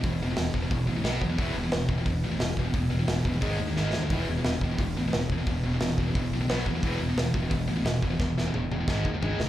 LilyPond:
<<
  \new Staff \with { instrumentName = "Distorted electric guitar" } { \clef bass \time 4/4 \key e \major \tempo 4 = 176 <e, b,>8 <e, b,>16 <e, b,>16 <e, b,>8 <e, b,>16 <e, b,>16 <e, b,>8 <e, b,>16 <e, b,>16 <b, fis b>8 <b, fis>16 <b, fis>16 | <e, b, e>8 <e, b,>16 <e, b,>16 <e, b,>8 <e, b,>16 <e, b,>16 <e, b,>8 <e, b,>16 <e, b,>16 <e, b,>8 <e, b,>16 <e, b,>16 | <e, b,>8 <e, b,>16 <e, b,>16 <e, b,>8 <e, b,>16 <e, b,>16 <gis, dis gis>8 <gis, dis>16 <gis, dis>16 <gis, dis gis>8 <gis, dis>16 <gis, dis>16 | <e, b, e>8 <e, b,>16 <e, b,>16 <e, b,>8 <e, b,>16 <e, b,>16 <e, b,>8 <e, b,>16 <e, b,>16 <e, b,>8 <e, b,>16 <e, b,>16 |
<e, b,>8 <e, b,>16 <e, b,>16 <e, b,>8 <e, b,>16 <e, b,>16 <e, b,>8 <e, b,>16 <e, b,>16 <b, fis b>8 <b, fis>16 <b, fis>16 | <e, b, e>8 <e, b,>16 <e, b,>16 <e, b,>8 <e, b,>16 <e, b,>16 <e, b,>8 <e, b,>16 <e, b,>16 <e, b,>8 <e, b,>16 <e, b,>16 | <e, b,>8 <e, b,>16 <e, b,>16 <e, b,>8 <e, b,>16 <e, b,>16 <gis, dis gis>8 <gis, dis>16 <gis, dis>16 <gis, dis gis>8 <gis, dis>16 r16 | }
  \new Staff \with { instrumentName = "Fingered electric bass" } { \clef bass \time 4/4 \key e \major e,,8 e,,8 e,,8 e,,8 e,,8 a,,8 b,,8 e,8 | e,,8 e,,8 e,,8 e,,8 e,,8 a,,8 e,,8 e,,8 | e,,8 e,,8 e,,8 e,,8 gis,,8 dis,8 gis,,8 dis,8 | e,,8 e,,8 e,,8 e,,8 e,,8 a,,8 e,,8 e,,8 |
e,,8 e,,8 e,,8 e,,8 e,,8 b,,8 b,,8 e,8 | e,,8 e,,8 e,,8 e,,8 e,,8 a,,8 e,,8 e,,8 | e,,8 e,,8 e,,8 e,,8 gis,,8 dis,8 gis,,8 f,,8 | }
  \new DrumStaff \with { instrumentName = "Drums" } \drummode { \time 4/4 <hho bd>4 <hho sn>8 bd8 <hho bd>4 <hho sn>8 bd8 | <hho bd>4 <hho sn>8 bd8 <hho bd>4 <hho sn>16 sn16 bd8 | <hho bd>4 <hho sn>8 bd8 <hho bd>4 sn8 sn8 | <hho bd>4 <hho sn>8 bd8 <hho bd>4 <hho sn>16 sn16 bd8 |
<hho bd>4 <hho sn>8 bd8 <hho bd>4 <hho sn>16 sn16 bd8 | <hho bd>4 <hho sn>8 bd8 <hho bd>4 <hho sn>8 bd8 | <bd sn>8 sn8 toml8 toml8 <bd sn>8 bd8 tomfh8 sn8 | }
>>